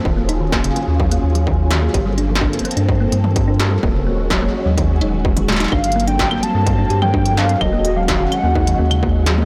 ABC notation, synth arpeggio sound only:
X:1
M:4/4
L:1/16
Q:1/4=127
K:Eb
V:1 name="Synth arpeggio sound"
E, B, E E, B, _D, B, z _G, B, z G, E, z E, B, | G G, D F, D z B, D z B, G, z G, D G G, | B, _D, B, z _G, B, z G, E, z E E,, E,, E, A, E | D z B, D z B, G, G, z D G G, D F, D z |
_G, B, z G, E, E, z B, E E, B, _D, B, z G, B, |]